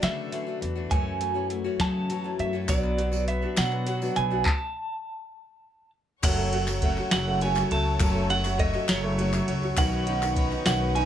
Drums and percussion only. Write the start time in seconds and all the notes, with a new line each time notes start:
0.03 snare, closed hi-hat
0.32 closed hi-hat
0.62 closed hi-hat
0.91 kick, closed hi-hat
1.21 closed hi-hat
1.50 closed hi-hat
1.80 kick, snare, closed hi-hat
2.10 closed hi-hat
2.39 closed hi-hat
2.68 kick, clap, closed hi-hat, tambourine
2.84 clap
2.98 clap, closed hi-hat
3.13 tambourine
3.28 closed hi-hat
3.57 snare, clap, closed hi-hat, tambourine
3.72 clap
3.87 closed hi-hat, tambourine
4.02 tambourine
4.16 clap, closed hi-hat
4.46 kick, clap
6.23 kick, clap, crash, ride, tambourine
6.38 tambourine
6.53 ride
6.67 clap, tambourine
6.82 kick, ride
6.97 clap, tambourine
7.11 snare, clap, ride, tambourine
7.40 ride, tambourine
7.55 clap, tambourine
7.71 ride
8.00 kick, clap, ride, tambourine
8.15 tambourine
8.30 ride
8.45 clap, tambourine
8.59 kick, ride
8.74 clap, tambourine
8.88 snare, clap, ride, tambourine
9.18 ride, tambourine
9.33 clap, tambourine
9.48 ride
9.63 tambourine
9.77 kick, clap, ride, tambourine
9.93 tambourine
10.07 ride
10.22 clap, tambourine
10.36 kick, ride
10.52 clap, tambourine
10.66 snare, clap, ride, tambourine
10.96 ride, tambourine